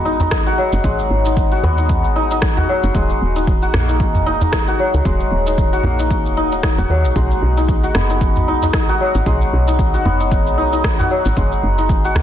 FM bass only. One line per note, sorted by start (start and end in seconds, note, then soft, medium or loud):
0.00 0.51 G#1 medium
0.73 0.80 F#1 medium
0.84 1.01 G#1 medium
1.10 1.56 G#1 medium
1.63 2.06 D#2 loud
2.04 2.61 G#1 loud
2.84 2.90 F#1 medium
2.95 3.12 D#1 loud
3.21 3.67 D#1 medium
3.74 4.17 A#1 loud
4.15 4.72 D#1 loud
4.94 5.01 C#2 medium
5.05 5.23 D#1 loud
5.31 5.77 D#1 medium
5.84 6.27 A#1 medium
6.25 6.77 D#1 medium
6.78 6.85 D#1 loud
6.90 7.06 D#2 medium
7.04 7.11 A#1 loud
7.16 7.33 B1 loud
7.42 7.88 B1 medium
7.95 8.38 F#1 loud
8.36 8.93 B1 loud
9.15 9.22 G#1 medium
9.26 9.44 B1 loud
9.53 9.98 B1 medium
10.05 10.48 F#1 loud
10.47 11.03 B1 loud
11.26 11.32 G#1 medium
11.37 11.54 F#1 loud
11.63 12.09 F#1 medium
12.16 12.22 C#2 loud